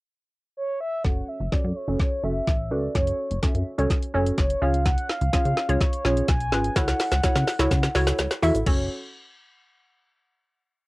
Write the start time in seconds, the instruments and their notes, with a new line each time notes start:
0.57 soft synth lead C#5
0.80 soft synth lead E5
1.04 analog synth bass F#1, synth pluck C#4 F#4 A4 C#5, kick, snare
1.28 soft synth lead E5
1.40 analog synth bass F#1
1.52 analog synth bass F#2, synth pluck C#4 F#4 A4 C#5, soft synth lead D5, kick, snare
1.64 analog synth bass F#2
1.76 soft synth lead C#5
1.88 analog synth bass F#1, synth pluck C#4 F#4 A4 C#5
2.00 soft synth lead C#5, kick, snare
2.23 analog synth bass F#1, synth pluck C#4 F#4 A4 E5, soft synth lead E5
2.47 analog synth bass A1, kick, snare
2.71 analog synth bass C#2, synth pluck C#4 F#4 A4 B4, soft synth lead D5
2.95 analog synth bass F#1, synth pluck C#4 F#4 A4 C#5, soft synth lead C#5, kick, snare, closed hi-hat
3.07 closed hi-hat
3.31 analog synth bass F#1, closed hi-hat
3.43 analog synth bass F#2, synth pluck C#4 F#4 A4 E5, kick, snare, closed hi-hat
3.55 analog synth bass F#2, closed hi-hat
3.78 analog synth bass C#2, synth pluck C#4 F#4 A4 C#5, closed hi-hat
3.90 kick, snare, closed hi-hat
4.02 closed hi-hat
4.14 analog synth bass F#1, synth pluck C#4 F#4 A4 C#5
4.26 closed hi-hat
4.38 analog synth bass F#1, soft synth lead C#5, kick, snare, closed hi-hat
4.50 closed hi-hat
4.62 analog synth bass C#2, synth pluck C#4 F4 G#4 C#5, soft synth lead F5
4.74 closed hi-hat
4.85 soft synth lead F#5, kick, snare, closed hi-hat
4.98 closed hi-hat
5.09 soft synth lead F5, snare
5.21 analog synth bass C#2, closed hi-hat
5.33 analog synth bass C#3, synth pluck C#4 F4 G#4 C#5, kick, snare, closed hi-hat
5.45 analog synth bass C#3, closed hi-hat
5.57 snare
5.69 analog synth bass C#2, synth pluck C#4 F4 G#4 C#5, closed hi-hat
5.80 soft synth lead C#5, kick, snare, closed hi-hat
5.93 closed hi-hat
6.05 analog synth bass B1, synth pluck C#4 F4 G#4 C#5, snare
6.17 closed hi-hat
6.28 analog synth bass B1, soft synth lead G#5, kick, snare, closed hi-hat
6.40 closed hi-hat
6.52 analog synth bass G#1, synth pluck C#4 F4 G#4 B4, snare
6.64 closed hi-hat
6.76 analog synth bass C#2, synth pluck E4 F#4 A4 C#5, soft synth lead F#5, kick, snare, closed hi-hat, shaker
6.88 snare, closed hi-hat, shaker
7.00 snare, open hi-hat, shaker
7.12 analog synth bass C#2, snare, closed hi-hat, shaker
7.23 analog synth bass C#3, synth pluck E4 F#4 A4 C#5, kick, snare, closed hi-hat, shaker
7.36 analog synth bass C#3, snare, closed hi-hat, shaker
7.47 snare, open hi-hat, shaker
7.59 analog synth bass C#2, synth pluck E4 F#4 A4 C#5, snare, closed hi-hat, shaker
7.71 analog synth bass C#3, kick, snare, closed hi-hat, shaker
7.83 snare, closed hi-hat, shaker
7.95 analog synth bass C#2, synth pluck E4 F#4 A4 C#5, snare, open hi-hat, shaker
8.07 snare, closed hi-hat, shaker
8.19 analog synth bass C#2, snare, closed hi-hat, shaker
8.31 snare, closed hi-hat, shaker
8.42 analog synth bass E2, synth pluck E4 F#4 A4 E5, open hi-hat, shaker
8.55 analog synth bass A1, closed hi-hat, shaker
8.66 analog synth bass F#1, synth pluck C#4 F#4 A4 C#5, kick, crash